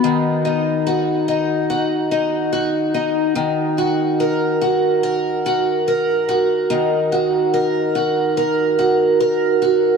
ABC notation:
X:1
M:4/4
L:1/8
Q:1/4=72
K:Ebm
V:1 name="Twelve-string acoustic guitar"
E, E G E G E G E | E, G B G B G B G | E, G B G B G B G |]